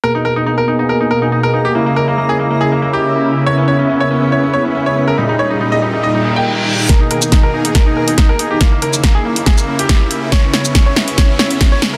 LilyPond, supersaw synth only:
\new Staff \with { instrumentName = "Supersaw synth" } { \time 4/4 \key gis \minor \tempo 4 = 140 << { <b, gis'>1 | <cis e'>1~ | <cis e'>1 | <ais, dis'>1 |
<b, gis'>1 | e'1~ | e'1 | } \\ { ais1~ | ais1 | b1 | g1 |
ais1 | ais1 | b1 | } >> }